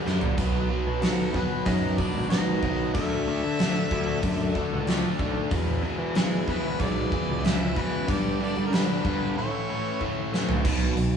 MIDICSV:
0, 0, Header, 1, 7, 480
1, 0, Start_track
1, 0, Tempo, 641711
1, 285, Time_signature, 4, 2, 24, 8
1, 8354, End_track
2, 0, Start_track
2, 0, Title_t, "Harmonica"
2, 0, Program_c, 0, 22
2, 768, Note_on_c, 0, 62, 48
2, 768, Note_on_c, 0, 66, 48
2, 768, Note_on_c, 0, 69, 68
2, 821, Note_off_c, 0, 62, 0
2, 832, Note_off_c, 0, 66, 0
2, 991, Note_off_c, 0, 69, 0
2, 1012, Note_on_c, 0, 66, 53
2, 1012, Note_on_c, 0, 68, 53
2, 1012, Note_on_c, 0, 71, 76
2, 1069, Note_off_c, 0, 66, 0
2, 1078, Note_off_c, 0, 68, 0
2, 1233, Note_off_c, 0, 71, 0
2, 1236, Note_on_c, 0, 68, 58
2, 1236, Note_on_c, 0, 71, 58
2, 1236, Note_on_c, 0, 75, 83
2, 1289, Note_off_c, 0, 71, 0
2, 1290, Note_off_c, 0, 68, 0
2, 1482, Note_on_c, 0, 74, 87
2, 1493, Note_off_c, 0, 75, 0
2, 1713, Note_off_c, 0, 74, 0
2, 1717, Note_on_c, 0, 75, 84
2, 2173, Note_off_c, 0, 75, 0
2, 2197, Note_on_c, 0, 76, 118
2, 3614, Note_off_c, 0, 76, 0
2, 4608, Note_on_c, 0, 61, 55
2, 4608, Note_on_c, 0, 64, 55
2, 4608, Note_on_c, 0, 68, 79
2, 4657, Note_off_c, 0, 64, 0
2, 4671, Note_off_c, 0, 61, 0
2, 4857, Note_on_c, 0, 71, 88
2, 4868, Note_off_c, 0, 68, 0
2, 5091, Note_on_c, 0, 74, 99
2, 5102, Note_off_c, 0, 71, 0
2, 5573, Note_on_c, 0, 76, 90
2, 5584, Note_off_c, 0, 74, 0
2, 5811, Note_off_c, 0, 76, 0
2, 5821, Note_on_c, 0, 71, 90
2, 6067, Note_on_c, 0, 74, 102
2, 6078, Note_off_c, 0, 71, 0
2, 6298, Note_off_c, 0, 74, 0
2, 6302, Note_on_c, 0, 74, 91
2, 6480, Note_on_c, 0, 70, 56
2, 6491, Note_off_c, 0, 74, 0
2, 6533, Note_on_c, 0, 71, 82
2, 6544, Note_off_c, 0, 70, 0
2, 7010, Note_off_c, 0, 71, 0
2, 7017, Note_on_c, 0, 73, 79
2, 7700, Note_off_c, 0, 73, 0
2, 8354, End_track
3, 0, Start_track
3, 0, Title_t, "Tonewheel organ"
3, 0, Program_c, 1, 16
3, 0, Note_on_c, 1, 59, 59
3, 0, Note_on_c, 1, 62, 63
3, 0, Note_on_c, 1, 67, 64
3, 0, Note_on_c, 1, 71, 65
3, 264, Note_off_c, 1, 71, 0
3, 265, Note_off_c, 1, 59, 0
3, 265, Note_off_c, 1, 62, 0
3, 265, Note_off_c, 1, 67, 0
3, 279, Note_on_c, 1, 59, 59
3, 281, Note_on_c, 1, 71, 61
3, 284, Note_on_c, 1, 51, 64
3, 284, Note_on_c, 1, 66, 63
3, 2186, Note_off_c, 1, 59, 0
3, 2187, Note_off_c, 1, 71, 0
3, 2188, Note_off_c, 1, 66, 0
3, 2189, Note_off_c, 1, 51, 0
3, 2198, Note_on_c, 1, 70, 57
3, 2201, Note_on_c, 1, 58, 59
3, 2201, Note_on_c, 1, 63, 58
3, 2203, Note_on_c, 1, 67, 60
3, 2363, Note_off_c, 1, 70, 0
3, 2365, Note_off_c, 1, 58, 0
3, 2365, Note_off_c, 1, 63, 0
3, 2366, Note_off_c, 1, 67, 0
3, 2367, Note_on_c, 1, 57, 70
3, 2369, Note_on_c, 1, 62, 64
3, 2371, Note_on_c, 1, 66, 65
3, 2373, Note_on_c, 1, 69, 64
3, 4111, Note_off_c, 1, 57, 0
3, 4112, Note_off_c, 1, 62, 0
3, 4113, Note_off_c, 1, 66, 0
3, 4114, Note_off_c, 1, 69, 0
3, 4129, Note_on_c, 1, 59, 68
3, 4131, Note_on_c, 1, 68, 64
3, 4132, Note_on_c, 1, 64, 60
3, 4133, Note_on_c, 1, 71, 66
3, 6029, Note_off_c, 1, 71, 0
3, 6030, Note_off_c, 1, 59, 0
3, 6031, Note_off_c, 1, 64, 0
3, 6031, Note_off_c, 1, 68, 0
3, 6038, Note_on_c, 1, 71, 65
3, 6039, Note_on_c, 1, 67, 68
3, 6042, Note_on_c, 1, 59, 65
3, 6043, Note_on_c, 1, 62, 64
3, 6993, Note_off_c, 1, 67, 0
3, 6993, Note_off_c, 1, 71, 0
3, 6995, Note_off_c, 1, 59, 0
3, 6995, Note_off_c, 1, 62, 0
3, 7009, Note_on_c, 1, 61, 67
3, 7009, Note_on_c, 1, 69, 68
3, 7011, Note_on_c, 1, 73, 63
3, 7014, Note_on_c, 1, 64, 60
3, 7956, Note_off_c, 1, 61, 0
3, 7956, Note_off_c, 1, 69, 0
3, 7957, Note_off_c, 1, 73, 0
3, 7959, Note_off_c, 1, 64, 0
3, 8354, End_track
4, 0, Start_track
4, 0, Title_t, "Lead electric guitar"
4, 0, Program_c, 2, 29
4, 766, Note_on_c, 2, 63, 63
4, 989, Note_off_c, 2, 63, 0
4, 1018, Note_on_c, 2, 59, 60
4, 1236, Note_off_c, 2, 59, 0
4, 1244, Note_on_c, 2, 63, 71
4, 1469, Note_off_c, 2, 63, 0
4, 1497, Note_on_c, 2, 62, 71
4, 1720, Note_off_c, 2, 62, 0
4, 1723, Note_on_c, 2, 63, 75
4, 2176, Note_off_c, 2, 63, 0
4, 2208, Note_on_c, 2, 69, 83
4, 3619, Note_off_c, 2, 69, 0
4, 4616, Note_on_c, 2, 56, 72
4, 4840, Note_off_c, 2, 56, 0
4, 4840, Note_on_c, 2, 59, 68
4, 5085, Note_off_c, 2, 59, 0
4, 5100, Note_on_c, 2, 68, 79
4, 5590, Note_off_c, 2, 68, 0
4, 5590, Note_on_c, 2, 64, 81
4, 5818, Note_on_c, 2, 59, 71
4, 5820, Note_off_c, 2, 64, 0
4, 6054, Note_off_c, 2, 59, 0
4, 6054, Note_on_c, 2, 67, 80
4, 6291, Note_off_c, 2, 67, 0
4, 6299, Note_on_c, 2, 64, 69
4, 6485, Note_off_c, 2, 64, 0
4, 6485, Note_on_c, 2, 61, 52
4, 6545, Note_off_c, 2, 61, 0
4, 6545, Note_on_c, 2, 62, 73
4, 7016, Note_off_c, 2, 62, 0
4, 7033, Note_on_c, 2, 64, 68
4, 7709, Note_off_c, 2, 64, 0
4, 8354, End_track
5, 0, Start_track
5, 0, Title_t, "Overdriven electric guitar"
5, 0, Program_c, 3, 29
5, 40, Note_on_c, 3, 43, 76
5, 44, Note_on_c, 3, 50, 68
5, 46, Note_on_c, 3, 55, 83
5, 268, Note_off_c, 3, 43, 0
5, 270, Note_off_c, 3, 50, 0
5, 271, Note_off_c, 3, 55, 0
5, 280, Note_on_c, 3, 47, 73
5, 285, Note_on_c, 3, 54, 91
5, 289, Note_on_c, 3, 59, 87
5, 511, Note_off_c, 3, 47, 0
5, 520, Note_on_c, 3, 47, 67
5, 522, Note_off_c, 3, 59, 0
5, 523, Note_off_c, 3, 54, 0
5, 526, Note_on_c, 3, 54, 71
5, 530, Note_on_c, 3, 59, 73
5, 751, Note_off_c, 3, 47, 0
5, 760, Note_off_c, 3, 59, 0
5, 760, Note_on_c, 3, 47, 90
5, 761, Note_off_c, 3, 54, 0
5, 764, Note_on_c, 3, 54, 94
5, 769, Note_on_c, 3, 59, 97
5, 991, Note_off_c, 3, 47, 0
5, 999, Note_on_c, 3, 47, 71
5, 1002, Note_off_c, 3, 59, 0
5, 1003, Note_off_c, 3, 54, 0
5, 1006, Note_on_c, 3, 54, 76
5, 1011, Note_on_c, 3, 59, 79
5, 1230, Note_off_c, 3, 47, 0
5, 1237, Note_off_c, 3, 54, 0
5, 1239, Note_on_c, 3, 47, 86
5, 1244, Note_off_c, 3, 59, 0
5, 1246, Note_on_c, 3, 54, 83
5, 1253, Note_on_c, 3, 59, 85
5, 1473, Note_off_c, 3, 47, 0
5, 1477, Note_off_c, 3, 54, 0
5, 1482, Note_on_c, 3, 47, 78
5, 1483, Note_off_c, 3, 59, 0
5, 1486, Note_on_c, 3, 54, 82
5, 1492, Note_on_c, 3, 59, 82
5, 1712, Note_off_c, 3, 47, 0
5, 1717, Note_off_c, 3, 54, 0
5, 1721, Note_on_c, 3, 47, 80
5, 1723, Note_off_c, 3, 59, 0
5, 1726, Note_on_c, 3, 54, 85
5, 1732, Note_on_c, 3, 59, 91
5, 1951, Note_off_c, 3, 47, 0
5, 1958, Note_off_c, 3, 54, 0
5, 1960, Note_on_c, 3, 47, 76
5, 1964, Note_off_c, 3, 59, 0
5, 1967, Note_on_c, 3, 54, 83
5, 1973, Note_on_c, 3, 59, 81
5, 2190, Note_off_c, 3, 47, 0
5, 2193, Note_off_c, 3, 54, 0
5, 2196, Note_off_c, 3, 59, 0
5, 2203, Note_on_c, 3, 50, 78
5, 2208, Note_on_c, 3, 57, 87
5, 2213, Note_on_c, 3, 62, 87
5, 2439, Note_off_c, 3, 50, 0
5, 2444, Note_off_c, 3, 57, 0
5, 2447, Note_off_c, 3, 62, 0
5, 2448, Note_on_c, 3, 50, 75
5, 2453, Note_on_c, 3, 57, 77
5, 2456, Note_on_c, 3, 62, 87
5, 2677, Note_off_c, 3, 50, 0
5, 2684, Note_off_c, 3, 57, 0
5, 2686, Note_on_c, 3, 50, 80
5, 2690, Note_off_c, 3, 62, 0
5, 2693, Note_on_c, 3, 57, 94
5, 2699, Note_on_c, 3, 62, 90
5, 2916, Note_off_c, 3, 50, 0
5, 2921, Note_off_c, 3, 57, 0
5, 2925, Note_on_c, 3, 50, 73
5, 2927, Note_off_c, 3, 62, 0
5, 2930, Note_on_c, 3, 57, 85
5, 2936, Note_on_c, 3, 62, 79
5, 3151, Note_off_c, 3, 50, 0
5, 3158, Note_off_c, 3, 57, 0
5, 3160, Note_on_c, 3, 50, 82
5, 3162, Note_off_c, 3, 62, 0
5, 3167, Note_on_c, 3, 57, 92
5, 3171, Note_on_c, 3, 62, 100
5, 3395, Note_off_c, 3, 50, 0
5, 3404, Note_off_c, 3, 57, 0
5, 3404, Note_on_c, 3, 50, 76
5, 3405, Note_off_c, 3, 62, 0
5, 3413, Note_on_c, 3, 57, 79
5, 3414, Note_on_c, 3, 62, 83
5, 3638, Note_off_c, 3, 50, 0
5, 3645, Note_off_c, 3, 57, 0
5, 3647, Note_on_c, 3, 50, 76
5, 3649, Note_off_c, 3, 62, 0
5, 3654, Note_on_c, 3, 57, 86
5, 3658, Note_on_c, 3, 62, 95
5, 3878, Note_off_c, 3, 50, 0
5, 3883, Note_off_c, 3, 57, 0
5, 3887, Note_on_c, 3, 50, 73
5, 3889, Note_off_c, 3, 62, 0
5, 3892, Note_on_c, 3, 57, 80
5, 3898, Note_on_c, 3, 62, 77
5, 4114, Note_off_c, 3, 50, 0
5, 4116, Note_off_c, 3, 57, 0
5, 4119, Note_off_c, 3, 62, 0
5, 4122, Note_on_c, 3, 40, 86
5, 4127, Note_on_c, 3, 47, 89
5, 4133, Note_on_c, 3, 52, 92
5, 4347, Note_off_c, 3, 40, 0
5, 4352, Note_off_c, 3, 47, 0
5, 4356, Note_on_c, 3, 40, 76
5, 4360, Note_off_c, 3, 52, 0
5, 4361, Note_on_c, 3, 47, 78
5, 4369, Note_on_c, 3, 52, 81
5, 4592, Note_off_c, 3, 40, 0
5, 4601, Note_off_c, 3, 47, 0
5, 4601, Note_on_c, 3, 40, 85
5, 4602, Note_off_c, 3, 52, 0
5, 4610, Note_on_c, 3, 47, 87
5, 4611, Note_on_c, 3, 52, 100
5, 4834, Note_off_c, 3, 40, 0
5, 4841, Note_off_c, 3, 47, 0
5, 4843, Note_on_c, 3, 40, 81
5, 4847, Note_off_c, 3, 52, 0
5, 4850, Note_on_c, 3, 47, 80
5, 4856, Note_on_c, 3, 52, 83
5, 5068, Note_off_c, 3, 40, 0
5, 5075, Note_off_c, 3, 47, 0
5, 5077, Note_on_c, 3, 40, 89
5, 5079, Note_off_c, 3, 52, 0
5, 5084, Note_on_c, 3, 47, 87
5, 5088, Note_on_c, 3, 52, 86
5, 5309, Note_off_c, 3, 40, 0
5, 5315, Note_off_c, 3, 47, 0
5, 5318, Note_on_c, 3, 40, 81
5, 5319, Note_off_c, 3, 52, 0
5, 5324, Note_on_c, 3, 47, 85
5, 5328, Note_on_c, 3, 52, 85
5, 5554, Note_off_c, 3, 40, 0
5, 5561, Note_off_c, 3, 47, 0
5, 5563, Note_off_c, 3, 52, 0
5, 5563, Note_on_c, 3, 40, 82
5, 5570, Note_on_c, 3, 47, 82
5, 5572, Note_on_c, 3, 52, 85
5, 5793, Note_off_c, 3, 40, 0
5, 5798, Note_off_c, 3, 47, 0
5, 5802, Note_on_c, 3, 40, 67
5, 5803, Note_off_c, 3, 52, 0
5, 5807, Note_on_c, 3, 47, 78
5, 5812, Note_on_c, 3, 52, 73
5, 6031, Note_off_c, 3, 40, 0
5, 6034, Note_off_c, 3, 47, 0
5, 6036, Note_off_c, 3, 52, 0
5, 6037, Note_on_c, 3, 43, 77
5, 6042, Note_on_c, 3, 50, 86
5, 6046, Note_on_c, 3, 55, 99
5, 6273, Note_off_c, 3, 43, 0
5, 6278, Note_off_c, 3, 50, 0
5, 6282, Note_off_c, 3, 55, 0
5, 6282, Note_on_c, 3, 43, 77
5, 6287, Note_on_c, 3, 50, 75
5, 6291, Note_on_c, 3, 55, 82
5, 6511, Note_off_c, 3, 43, 0
5, 6518, Note_off_c, 3, 50, 0
5, 6520, Note_on_c, 3, 43, 82
5, 6522, Note_off_c, 3, 55, 0
5, 6527, Note_on_c, 3, 50, 88
5, 6531, Note_on_c, 3, 55, 103
5, 6762, Note_off_c, 3, 43, 0
5, 6768, Note_off_c, 3, 50, 0
5, 6768, Note_off_c, 3, 55, 0
5, 6771, Note_on_c, 3, 43, 72
5, 6777, Note_on_c, 3, 50, 80
5, 6777, Note_on_c, 3, 55, 80
5, 6995, Note_off_c, 3, 43, 0
5, 6998, Note_off_c, 3, 50, 0
5, 6998, Note_off_c, 3, 55, 0
5, 7011, Note_on_c, 3, 45, 85
5, 7013, Note_on_c, 3, 52, 82
5, 7019, Note_on_c, 3, 57, 90
5, 7238, Note_off_c, 3, 45, 0
5, 7243, Note_off_c, 3, 52, 0
5, 7247, Note_on_c, 3, 45, 75
5, 7248, Note_off_c, 3, 57, 0
5, 7252, Note_on_c, 3, 52, 79
5, 7257, Note_on_c, 3, 57, 90
5, 7476, Note_off_c, 3, 45, 0
5, 7483, Note_off_c, 3, 52, 0
5, 7485, Note_on_c, 3, 45, 70
5, 7490, Note_off_c, 3, 57, 0
5, 7492, Note_on_c, 3, 52, 85
5, 7499, Note_on_c, 3, 57, 81
5, 7715, Note_off_c, 3, 45, 0
5, 7721, Note_off_c, 3, 52, 0
5, 7724, Note_on_c, 3, 45, 79
5, 7729, Note_off_c, 3, 57, 0
5, 7730, Note_on_c, 3, 52, 74
5, 7738, Note_on_c, 3, 57, 75
5, 7950, Note_off_c, 3, 45, 0
5, 7953, Note_off_c, 3, 52, 0
5, 7957, Note_off_c, 3, 57, 0
5, 7963, Note_on_c, 3, 47, 97
5, 8196, Note_off_c, 3, 47, 0
5, 8208, Note_on_c, 3, 47, 64
5, 8354, Note_off_c, 3, 47, 0
5, 8354, End_track
6, 0, Start_track
6, 0, Title_t, "Picked electric bass"
6, 0, Program_c, 4, 34
6, 49, Note_on_c, 4, 42, 78
6, 159, Note_off_c, 4, 42, 0
6, 282, Note_on_c, 4, 35, 92
6, 507, Note_off_c, 4, 35, 0
6, 650, Note_on_c, 4, 47, 82
6, 983, Note_off_c, 4, 47, 0
6, 1003, Note_on_c, 4, 47, 81
6, 1116, Note_off_c, 4, 47, 0
6, 1239, Note_on_c, 4, 42, 85
6, 1465, Note_off_c, 4, 42, 0
6, 1604, Note_on_c, 4, 32, 79
6, 1940, Note_off_c, 4, 32, 0
6, 1962, Note_on_c, 4, 35, 81
6, 2188, Note_off_c, 4, 35, 0
6, 2201, Note_on_c, 4, 38, 92
6, 2539, Note_off_c, 4, 38, 0
6, 2570, Note_on_c, 4, 50, 75
6, 2792, Note_off_c, 4, 50, 0
6, 2924, Note_on_c, 4, 38, 84
6, 3149, Note_off_c, 4, 38, 0
6, 3163, Note_on_c, 4, 42, 84
6, 3389, Note_off_c, 4, 42, 0
6, 3534, Note_on_c, 4, 37, 76
6, 3755, Note_off_c, 4, 37, 0
6, 3882, Note_on_c, 4, 35, 85
6, 3997, Note_off_c, 4, 35, 0
6, 4122, Note_on_c, 4, 40, 92
6, 4349, Note_off_c, 4, 40, 0
6, 4477, Note_on_c, 4, 52, 89
6, 4817, Note_off_c, 4, 52, 0
6, 4842, Note_on_c, 4, 52, 85
6, 4957, Note_off_c, 4, 52, 0
6, 5081, Note_on_c, 4, 35, 89
6, 5308, Note_off_c, 4, 35, 0
6, 5451, Note_on_c, 4, 37, 90
6, 5784, Note_off_c, 4, 37, 0
6, 5805, Note_on_c, 4, 52, 76
6, 6030, Note_off_c, 4, 52, 0
6, 6048, Note_on_c, 4, 43, 94
6, 6382, Note_off_c, 4, 43, 0
6, 6415, Note_on_c, 4, 55, 77
6, 6635, Note_off_c, 4, 55, 0
6, 6767, Note_on_c, 4, 43, 83
6, 6990, Note_off_c, 4, 43, 0
6, 7962, Note_on_c, 4, 35, 96
6, 8186, Note_off_c, 4, 35, 0
6, 8196, Note_on_c, 4, 35, 76
6, 8354, Note_off_c, 4, 35, 0
6, 8354, End_track
7, 0, Start_track
7, 0, Title_t, "Drums"
7, 50, Note_on_c, 9, 38, 50
7, 125, Note_off_c, 9, 38, 0
7, 160, Note_on_c, 9, 43, 77
7, 234, Note_off_c, 9, 43, 0
7, 283, Note_on_c, 9, 46, 45
7, 283, Note_on_c, 9, 49, 71
7, 284, Note_on_c, 9, 36, 100
7, 358, Note_off_c, 9, 36, 0
7, 358, Note_off_c, 9, 46, 0
7, 358, Note_off_c, 9, 49, 0
7, 763, Note_on_c, 9, 46, 45
7, 772, Note_on_c, 9, 38, 103
7, 838, Note_off_c, 9, 46, 0
7, 847, Note_off_c, 9, 38, 0
7, 1005, Note_on_c, 9, 36, 79
7, 1080, Note_off_c, 9, 36, 0
7, 1240, Note_on_c, 9, 46, 42
7, 1244, Note_on_c, 9, 36, 99
7, 1315, Note_off_c, 9, 46, 0
7, 1318, Note_off_c, 9, 36, 0
7, 1484, Note_on_c, 9, 36, 84
7, 1558, Note_off_c, 9, 36, 0
7, 1722, Note_on_c, 9, 46, 41
7, 1731, Note_on_c, 9, 38, 95
7, 1797, Note_off_c, 9, 46, 0
7, 1806, Note_off_c, 9, 38, 0
7, 1964, Note_on_c, 9, 36, 73
7, 2039, Note_off_c, 9, 36, 0
7, 2205, Note_on_c, 9, 36, 99
7, 2205, Note_on_c, 9, 46, 42
7, 2279, Note_off_c, 9, 36, 0
7, 2280, Note_off_c, 9, 46, 0
7, 2685, Note_on_c, 9, 46, 48
7, 2694, Note_on_c, 9, 38, 108
7, 2760, Note_off_c, 9, 46, 0
7, 2769, Note_off_c, 9, 38, 0
7, 2925, Note_on_c, 9, 36, 79
7, 3000, Note_off_c, 9, 36, 0
7, 3162, Note_on_c, 9, 46, 49
7, 3165, Note_on_c, 9, 36, 100
7, 3237, Note_off_c, 9, 46, 0
7, 3240, Note_off_c, 9, 36, 0
7, 3405, Note_on_c, 9, 36, 81
7, 3480, Note_off_c, 9, 36, 0
7, 3645, Note_on_c, 9, 46, 47
7, 3654, Note_on_c, 9, 38, 98
7, 3720, Note_off_c, 9, 46, 0
7, 3729, Note_off_c, 9, 38, 0
7, 3884, Note_on_c, 9, 36, 74
7, 3959, Note_off_c, 9, 36, 0
7, 4122, Note_on_c, 9, 46, 47
7, 4124, Note_on_c, 9, 36, 95
7, 4197, Note_off_c, 9, 46, 0
7, 4199, Note_off_c, 9, 36, 0
7, 4602, Note_on_c, 9, 46, 49
7, 4611, Note_on_c, 9, 38, 105
7, 4677, Note_off_c, 9, 46, 0
7, 4686, Note_off_c, 9, 38, 0
7, 4844, Note_on_c, 9, 36, 76
7, 4919, Note_off_c, 9, 36, 0
7, 5085, Note_on_c, 9, 36, 98
7, 5087, Note_on_c, 9, 46, 44
7, 5160, Note_off_c, 9, 36, 0
7, 5162, Note_off_c, 9, 46, 0
7, 5326, Note_on_c, 9, 36, 84
7, 5401, Note_off_c, 9, 36, 0
7, 5570, Note_on_c, 9, 46, 43
7, 5579, Note_on_c, 9, 38, 97
7, 5645, Note_off_c, 9, 46, 0
7, 5654, Note_off_c, 9, 38, 0
7, 5808, Note_on_c, 9, 36, 76
7, 5882, Note_off_c, 9, 36, 0
7, 6047, Note_on_c, 9, 36, 104
7, 6049, Note_on_c, 9, 46, 43
7, 6122, Note_off_c, 9, 36, 0
7, 6124, Note_off_c, 9, 46, 0
7, 6529, Note_on_c, 9, 46, 51
7, 6538, Note_on_c, 9, 38, 100
7, 6604, Note_off_c, 9, 46, 0
7, 6613, Note_off_c, 9, 38, 0
7, 6768, Note_on_c, 9, 36, 84
7, 6843, Note_off_c, 9, 36, 0
7, 7487, Note_on_c, 9, 36, 50
7, 7562, Note_off_c, 9, 36, 0
7, 7734, Note_on_c, 9, 38, 70
7, 7809, Note_off_c, 9, 38, 0
7, 7844, Note_on_c, 9, 43, 79
7, 7919, Note_off_c, 9, 43, 0
7, 7965, Note_on_c, 9, 36, 107
7, 7967, Note_on_c, 9, 57, 105
7, 8040, Note_off_c, 9, 36, 0
7, 8042, Note_off_c, 9, 57, 0
7, 8205, Note_on_c, 9, 46, 59
7, 8280, Note_off_c, 9, 46, 0
7, 8354, End_track
0, 0, End_of_file